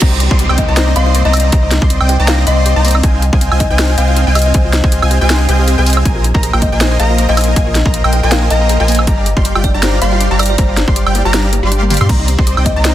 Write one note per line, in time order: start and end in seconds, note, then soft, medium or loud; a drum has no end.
0.01 0.29 C2 loud
0.01 0.06 A#3 medium
0.01 0.21 C4 medium
0.01 0.21 C5 medium
0.01 0.21 D5 medium
0.01 0.21 D#5 medium
0.01 0.21 A#5 medium
0.01 kick loud
0.01 closed hi-hat medium
0.01 crash loud
0.01 downlifter medium
0.12 0.14 D#4 medium
0.20 0.25 C4 medium
0.20 closed hi-hat medium
0.31 0.48 C2 loud
0.31 0.33 C4 medium
0.31 0.47 C4 medium
0.31 0.47 C5 medium
0.31 0.47 D5 medium
0.31 0.47 D#5 medium
0.31 0.47 C6 medium
0.31 kick loud
0.39 0.46 G4 medium
0.39 closed hi-hat medium
0.49 0.67 C2 loud
0.49 0.65 C4 medium
0.49 0.53 D#4 medium
0.49 0.65 C5 medium
0.49 0.65 D5 medium
0.49 0.65 D#5 medium
0.49 0.65 G5 loud
0.49 high woodblock medium
0.58 0.63 A#3 medium
0.58 0.69 D#5 medium
0.58 kick medium
0.58 closed hi-hat medium
0.68 0.94 C2 loud
0.68 0.94 C4 loud
0.68 0.71 D#4 medium
0.68 0.94 C5 medium
0.68 0.94 D5 medium
0.68 0.94 D#5 medium
0.68 0.94 A#5 loud
0.77 0.81 C4 medium
0.77 0.88 C5 medium
0.77 snare loud
0.77 closed hi-hat medium
0.88 0.90 C4 medium
0.96 1.23 C2 medium
0.96 1.23 C4 medium
0.96 1.02 G4 medium
0.96 1.23 C5 medium
0.96 1.23 D5 medium
0.96 1.23 D#5 medium
0.96 1.03 F5 medium
0.96 1.23 C6 medium
0.96 closed hi-hat medium
1.06 1.10 D#4 medium
1.06 1.12 F5 medium
1.15 1.19 A#3 medium
1.15 closed hi-hat medium
1.25 1.51 C2 loud
1.25 1.50 C4 medium
1.25 1.27 D#4 medium
1.25 1.50 C5 medium
1.25 1.51 D5 medium
1.25 1.50 D#5 medium
1.25 1.31 D#5 medium
1.25 1.50 A#5 medium
1.25 1.51 A#5 medium
1.33 1.38 C4 medium
1.33 closed hi-hat medium
1.33 open hi-hat medium
1.33 high woodblock medium
1.40 closed hi-hat medium
1.44 1.46 C4 medium
1.52 1.80 C2 loud
1.52 1.72 C4 medium
1.52 1.59 G4 medium
1.52 1.72 C5 medium
1.52 1.72 D#5 medium
1.52 1.72 A#5 medium
1.52 kick loud
1.52 closed hi-hat medium
1.63 1.66 D#4 medium
1.71 1.76 A#3 medium
1.71 snare medium
1.71 closed hi-hat medium
1.82 1.99 C2 loud
1.82 1.98 C4 medium
1.82 1.84 D#4 medium
1.82 1.98 C5 medium
1.82 1.98 D5 medium
1.82 1.98 D#5 medium
1.82 1.98 C6 medium
1.82 kick loud
1.90 1.95 C4 medium
1.90 closed hi-hat medium
2.01 2.18 C2 loud
2.01 2.03 C4 medium
2.01 2.16 C4 medium
2.01 2.16 C5 medium
2.01 2.16 D5 medium
2.01 2.16 D#5 medium
2.01 2.16 G5 loud
2.01 high woodblock medium
2.09 2.16 G4 medium
2.09 2.20 G5 loud
2.09 closed hi-hat medium
2.19 2.45 C2 loud
2.19 2.45 C4 medium
2.19 2.23 D#4 medium
2.19 2.45 C5 medium
2.19 2.45 D5 medium
2.19 2.45 D#5 medium
2.19 2.45 A#5 loud
2.28 2.32 A#3 medium
2.28 2.39 F5 medium
2.28 snare loud
2.28 closed hi-hat medium
2.38 2.40 D#4 medium
2.47 2.74 C2 medium
2.47 2.74 C4 medium
2.47 2.51 C4 medium
2.47 2.74 C5 medium
2.47 2.74 D5 medium
2.47 2.74 D#5 medium
2.47 2.76 D#5 medium
2.47 2.74 C6 medium
2.47 2.74 C6 loud
2.47 closed hi-hat medium
2.57 2.59 C4 medium
2.66 2.72 G4 medium
2.66 closed hi-hat medium
2.76 3.02 C2 loud
2.76 3.02 C4 medium
2.76 2.80 D#4 medium
2.76 3.02 C5 medium
2.76 3.02 D5 medium
2.76 3.02 D#5 medium
2.76 3.02 A#5 medium
2.85 2.89 A#3 medium
2.85 closed hi-hat medium
2.85 open hi-hat medium
2.91 closed hi-hat medium
2.95 2.97 D#4 medium
2.95 high woodblock medium
3.03 3.31 C2 loud
3.03 3.23 C4 medium
3.03 3.08 D#4 medium
3.03 3.23 C5 medium
3.03 3.23 F5 medium
3.03 3.23 G5 medium
3.03 3.23 G#5 medium
3.03 kick loud
3.03 closed hi-hat medium
3.14 3.16 D#4 medium
3.22 3.29 G4 medium
3.22 closed hi-hat medium
3.33 3.50 C2 loud
3.33 3.49 C4 medium
3.33 3.36 F4 medium
3.33 3.49 C5 medium
3.33 3.49 D#5 medium
3.33 3.49 F5 medium
3.33 3.49 G5 medium
3.33 3.49 G#5 medium
3.33 kick loud
3.41 3.46 C4 medium
3.41 closed hi-hat medium
3.52 3.68 C2 medium
3.52 3.67 C4 medium
3.52 3.54 F4 medium
3.52 3.67 C5 medium
3.52 3.67 D#5 medium
3.52 3.67 F5 medium
3.52 3.67 G5 medium
3.52 3.67 G#5 loud
3.52 high woodblock medium
3.60 3.64 D#4 medium
3.60 3.71 D#5 medium
3.60 kick medium
3.60 closed hi-hat medium
3.70 3.96 C2 loud
3.70 3.96 C4 loud
3.70 3.73 D#4 medium
3.70 3.96 C5 medium
3.70 3.96 D#5 medium
3.70 3.96 F5 medium
3.70 3.96 G5 medium
3.70 3.96 G#5 loud
3.79 3.85 G4 medium
3.79 3.90 C5 medium
3.79 snare loud
3.79 closed hi-hat medium
3.89 3.93 F4 medium
3.98 4.25 C2 medium
3.98 4.25 C4 medium
3.98 4.02 C4 medium
3.98 4.25 C5 medium
3.98 4.25 D#5 medium
3.98 4.04 F5 medium
3.98 4.25 F5 medium
3.98 4.25 G5 medium
3.98 4.25 G#5 loud
3.98 4.25 G#5 medium
3.98 closed hi-hat medium
4.08 4.10 F4 medium
4.08 4.13 F5 medium
4.17 4.21 D#4 medium
4.17 closed hi-hat medium
4.27 4.53 C2 loud
4.27 4.52 C4 medium
4.27 4.29 D#4 medium
4.27 4.52 C5 medium
4.27 4.52 D#5 medium
4.27 4.52 F5 medium
4.27 4.52 G5 medium
4.27 4.52 G#5 medium
4.35 4.42 G4 medium
4.35 4.44 D#5 medium
4.35 closed hi-hat medium
4.35 open hi-hat medium
4.35 high woodblock medium
4.42 closed hi-hat medium
4.46 4.50 F4 medium
4.46 4.53 D#5 medium
4.54 4.82 C2 loud
4.54 4.73 C4 medium
4.54 4.59 C4 medium
4.54 4.73 C5 medium
4.54 4.65 C5 medium
4.54 4.73 F5 medium
4.54 4.73 G5 medium
4.54 4.73 G#5 medium
4.54 4.74 G#5 medium
4.54 kick loud
4.54 closed hi-hat medium
4.65 4.67 F4 medium
4.73 4.78 D#4 medium
4.73 snare medium
4.73 closed hi-hat medium
4.83 5.01 C2 loud
4.83 5.00 C4 medium
4.83 4.86 D#4 medium
4.83 5.00 C5 medium
4.83 5.00 D#5 medium
4.83 5.00 F5 medium
4.83 5.00 G5 medium
4.83 5.00 G#5 medium
4.83 kick loud
4.92 4.99 G4 medium
4.92 closed hi-hat medium
5.02 5.19 C2 medium
5.02 5.18 C4 medium
5.02 5.06 F4 medium
5.02 5.18 C5 medium
5.02 5.18 D#5 medium
5.02 5.18 F5 medium
5.02 5.18 G5 medium
5.02 5.18 G#5 loud
5.02 high woodblock medium
5.11 5.15 C4 medium
5.11 5.22 G4 loud
5.11 closed hi-hat medium
5.21 5.47 C2 loud
5.21 5.47 C4 medium
5.21 5.24 F4 medium
5.21 5.47 C5 medium
5.21 5.47 D#5 medium
5.21 5.47 F5 medium
5.21 5.47 G5 medium
5.21 5.47 G#5 loud
5.30 5.34 D#4 medium
5.30 snare loud
5.30 closed hi-hat medium
5.40 5.42 D#4 medium
5.49 5.76 C2 loud
5.49 5.76 C4 medium
5.49 5.78 G4 medium
5.49 5.55 G4 loud
5.49 5.76 C5 medium
5.49 5.76 D#5 medium
5.49 5.76 F5 medium
5.49 5.76 G5 medium
5.49 5.75 G#5 medium
5.49 5.76 G#5 loud
5.49 closed hi-hat medium
5.59 5.61 G4 medium
5.68 5.72 G4 medium
5.68 closed hi-hat medium
5.78 6.04 C2 loud
5.78 6.03 C4 medium
5.78 5.80 G#4 medium
5.78 6.03 C5 medium
5.78 6.03 D#5 medium
5.78 6.03 F5 medium
5.78 6.03 G5 medium
5.78 6.03 G#5 loud
5.78 6.03 G#5 medium
5.86 5.91 C5 medium
5.86 closed hi-hat medium
5.86 open hi-hat medium
5.93 6.02 C5 medium
5.93 closed hi-hat medium
5.97 high woodblock medium
6.05 6.33 A#1 loud
6.05 6.10 A#3 medium
6.05 6.25 A#3 medium
6.05 6.25 A#4 medium
6.05 6.25 C5 medium
6.05 6.25 D#5 medium
6.05 6.24 G#5 medium
6.05 6.25 G#5 medium
6.05 kick loud
6.05 closed hi-hat medium
6.16 6.18 F4 medium
6.24 6.29 D#4 medium
6.24 closed hi-hat medium
6.34 6.51 A#1 loud
6.34 6.51 A#3 medium
6.34 6.37 D#4 medium
6.34 6.51 A#4 medium
6.34 6.51 C5 medium
6.34 6.51 D#5 medium
6.34 6.51 A#5 medium
6.34 kick loud
6.43 6.50 G#4 medium
6.43 closed hi-hat medium
6.53 6.70 A#1 loud
6.53 6.69 A#3 medium
6.53 6.57 F4 medium
6.53 6.69 A#4 medium
6.53 6.69 C5 medium
6.53 6.69 D#5 medium
6.53 6.69 G5 loud
6.53 high woodblock medium
6.62 6.66 A#3 medium
6.62 6.73 D#5 medium
6.62 kick medium
6.62 closed hi-hat medium
6.72 6.98 A#1 loud
6.72 6.98 A#3 medium
6.72 6.74 F4 medium
6.72 6.98 A#4 medium
6.72 6.98 C5 medium
6.72 6.98 D#5 medium
6.72 6.98 G#5 loud
6.81 6.85 D#4 medium
6.81 6.92 C5 medium
6.81 snare loud
6.81 closed hi-hat medium
6.91 6.93 D#4 medium
6.99 7.27 A#1 medium
6.99 7.26 A#3 medium
6.99 7.06 G#4 medium
6.99 7.26 A#4 medium
6.99 7.26 C5 medium
6.99 7.26 D#5 medium
6.99 7.06 F5 medium
6.99 7.26 A#5 loud
6.99 closed hi-hat medium
7.10 7.14 F4 medium
7.10 7.15 F5 medium
7.18 7.23 A#3 medium
7.18 closed hi-hat medium
7.29 7.55 A#1 loud
7.29 7.54 A#3 medium
7.29 7.31 F4 medium
7.29 7.54 A#4 medium
7.29 7.54 C5 medium
7.29 7.54 D#5 medium
7.29 7.34 D#5 medium
7.29 7.54 G#5 loud
7.29 7.54 G#5 medium
7.37 7.42 D#4 medium
7.37 7.44 D#5 medium
7.37 closed hi-hat medium
7.37 open hi-hat medium
7.37 high woodblock medium
7.44 closed hi-hat medium
7.48 7.50 D#4 medium
7.56 7.84 A#1 loud
7.56 7.75 A#3 medium
7.56 7.63 G#4 medium
7.56 7.75 A#4 medium
7.56 7.75 C5 medium
7.56 7.75 D#5 medium
7.56 7.75 G#5 medium
7.56 kick loud
7.56 closed hi-hat medium
7.67 7.70 F4 medium
7.75 7.80 A#3 medium
7.75 snare medium
7.75 closed hi-hat medium
7.85 8.02 A#1 loud
7.85 8.02 A#3 medium
7.85 7.88 F4 medium
7.85 8.02 A#4 medium
7.85 8.02 C5 medium
7.85 8.02 D#5 medium
7.85 8.02 A#5 medium
7.85 kick loud
7.94 7.98 D#4 medium
7.94 closed hi-hat medium
8.04 8.21 A#1 loud
8.04 8.20 A#3 medium
8.04 8.07 D#4 medium
8.04 8.20 A#4 medium
8.04 8.20 C5 medium
8.04 8.20 D#5 medium
8.04 8.20 G5 loud
8.04 high woodblock medium
8.13 8.20 G#4 medium
8.13 8.24 G5 loud
8.13 closed hi-hat medium
8.23 8.49 A#1 medium
8.23 8.48 A#3 loud
8.23 8.27 F4 medium
8.23 8.49 A#4 medium
8.23 8.49 C5 medium
8.23 8.49 D#5 medium
8.23 8.49 G#5 loud
8.32 8.36 A#3 medium
8.32 8.42 F5 medium
8.32 snare loud
8.32 closed hi-hat medium
8.42 8.44 F4 medium
8.50 8.78 A#1 loud
8.50 8.77 A#3 medium
8.50 8.55 D#4 medium
8.50 8.77 A#4 medium
8.50 8.77 C5 medium
8.50 8.77 D#5 medium
8.50 8.80 D#5 medium
8.50 8.77 A#5 loud
8.50 8.77 A#5 medium
8.50 closed hi-hat medium
8.61 8.63 D#4 medium
8.69 8.76 G#4 medium
8.69 closed hi-hat medium
8.80 9.09 A#1 loud
8.80 9.05 A#3 medium
8.80 8.84 F4 medium
8.80 9.05 A#4 medium
8.80 9.05 C5 medium
8.80 9.05 D#5 medium
8.80 9.05 G#5 loud
8.80 9.05 G#5 medium
8.88 8.93 A#3 medium
8.88 closed hi-hat medium
8.88 open hi-hat loud
8.95 closed hi-hat medium
8.99 9.01 F4 medium
8.99 high woodblock medium
9.07 9.35 G1 loud
9.07 9.26 G3 medium
9.07 9.12 D4 medium
9.07 9.26 G4 medium
9.07 9.26 D5 medium
9.07 9.26 F5 medium
9.07 9.26 A#5 medium
9.07 kick loud
9.07 closed hi-hat medium
9.18 9.20 D4 medium
9.26 9.33 G4 medium
9.26 closed hi-hat medium
9.37 9.53 G1 loud
9.37 9.53 G3 medium
9.37 9.40 F4 medium
9.37 9.53 G4 medium
9.37 9.53 D5 medium
9.37 9.53 F5 medium
9.37 9.53 C6 medium
9.37 kick loud
9.45 9.49 A#3 medium
9.45 closed hi-hat medium
9.55 9.72 G1 loud
9.55 9.71 G3 medium
9.55 9.58 F4 medium
9.55 9.71 G4 medium
9.55 9.71 D5 medium
9.55 9.71 F5 medium
9.55 9.71 G5 loud
9.55 high woodblock medium
9.64 9.68 D4 medium
9.64 9.75 D5 loud
9.64 kick medium
9.64 closed hi-hat medium
9.74 10.00 G1 loud
9.74 10.00 G3 medium
9.74 9.77 D4 medium
9.74 10.00 G4 medium
9.74 10.00 D5 medium
9.74 10.00 F5 medium
9.74 10.00 A#5 loud
9.83 9.89 G4 medium
9.83 9.94 C5 medium
9.83 snare loud
9.83 closed hi-hat medium
9.94 9.97 F4 medium
10.02 10.29 G1 loud
10.02 10.28 G3 medium
10.02 10.06 A#3 medium
10.02 10.28 G4 medium
10.02 10.28 D5 medium
10.02 10.08 F5 medium
10.02 10.28 F5 medium
10.02 10.28 C6 loud
10.02 closed hi-hat medium
10.12 10.14 F4 medium
10.12 10.17 F5 medium
10.21 10.25 D4 medium
10.21 closed hi-hat medium
10.31 10.57 G1 loud
10.31 10.56 G3 medium
10.31 10.33 D4 medium
10.31 10.56 G4 medium
10.31 10.56 D5 medium
10.31 10.56 F5 medium
10.31 10.56 A#5 medium
10.39 10.46 G4 medium
10.39 10.48 D5 medium
10.39 closed hi-hat medium
10.39 open hi-hat loud
10.39 high woodblock medium
10.46 closed hi-hat medium
10.50 10.53 F4 medium
10.50 10.56 D5 medium
10.58 10.86 G1 loud
10.58 10.77 G3 medium
10.58 10.63 A#3 medium
10.58 10.77 G4 medium
10.58 10.69 C5 medium
10.58 10.77 D5 medium
10.58 10.77 A#5 medium
10.58 kick loud
10.58 closed hi-hat medium
10.69 10.71 F4 medium
10.77 10.82 D4 medium
10.77 snare medium
10.77 closed hi-hat medium
10.87 11.04 G1 loud
10.87 11.04 G3 medium
10.87 10.90 D4 medium
10.87 11.04 G4 medium
10.87 11.04 D5 medium
10.87 11.04 F5 medium
10.87 11.04 C6 medium
10.87 kick loud
10.96 11.03 G4 medium
10.96 closed hi-hat medium
11.06 11.23 G1 loud
11.06 11.22 G3 medium
11.06 11.10 F4 medium
11.06 11.22 G4 medium
11.06 11.22 D5 medium
11.06 11.22 F5 medium
11.06 11.22 G5 loud
11.06 high woodblock medium
11.15 11.19 A#3 medium
11.15 11.26 G4 medium
11.15 closed hi-hat medium
11.25 11.61 G1 loud
11.25 11.51 G3 loud
11.25 11.27 F4 medium
11.25 11.51 G4 medium
11.25 11.51 D5 medium
11.25 11.51 F5 medium
11.25 11.50 A#5 loud
11.25 11.51 A#5 loud
11.34 11.38 D4 medium
11.34 snare loud
11.34 closed hi-hat medium
11.44 11.46 D4 medium
11.53 11.59 A#3 medium
11.53 11.82 G4 medium
11.53 closed hi-hat medium
11.63 11.99 G1 loud
11.63 11.98 G3 medium
11.63 11.67 F4 loud
11.63 11.98 G4 medium
11.63 11.98 D5 medium
11.63 11.98 F5 medium
11.63 11.98 C6 medium
11.63 11.98 C6 loud
11.72 11.76 D4 medium
11.72 closed hi-hat medium
11.82 11.87 A#3 medium
11.82 high tom medium
11.90 11.97 A#3 loud
11.90 closed hi-hat medium
11.90 open hi-hat medium
11.90 mid tom medium
11.97 12.07 G2 loud
11.97 12.07 G3 loud
11.97 12.07 G4 medium
11.97 12.03 G4 medium
11.97 12.07 D5 medium
11.97 12.07 F5 medium
11.97 12.07 C6 loud
11.97 closed hi-hat medium
12.01 mid tom medium
12.01 high woodblock medium
12.09 12.36 C2 loud
12.09 12.14 A#3 medium
12.09 12.28 C4 medium
12.09 12.28 C5 medium
12.09 12.28 D5 medium
12.09 12.28 D#5 medium
12.09 12.28 A#5 medium
12.09 kick loud
12.09 closed hi-hat medium
12.09 crash medium
12.09 crash soft
12.20 12.22 D#4 medium
12.28 12.32 C4 medium
12.28 closed hi-hat medium
12.38 12.55 C2 loud
12.38 12.55 C4 medium
12.38 12.41 C4 medium
12.38 12.55 C5 medium
12.38 12.55 D5 medium
12.38 12.55 D#5 medium
12.38 12.55 C6 medium
12.38 kick loud
12.47 12.53 G4 medium
12.47 closed hi-hat medium
12.57 12.74 C2 medium
12.57 12.73 C4 medium
12.57 12.61 D#4 medium
12.57 12.73 C5 medium
12.57 12.73 D5 medium
12.57 12.73 D#5 medium
12.57 12.73 G5 loud
12.57 high woodblock medium
12.66 12.70 A#3 medium
12.66 12.77 D#5 medium
12.66 kick medium
12.66 closed hi-hat medium
12.76 12.95 C2 loud
12.76 12.95 C4 medium
12.76 12.78 D#4 medium
12.76 12.95 C5 medium
12.76 12.95 D5 medium
12.76 12.95 D#5 medium
12.76 12.95 A#5 loud
12.85 12.89 C4 medium
12.85 12.95 C5 medium
12.85 snare loud
12.85 closed hi-hat medium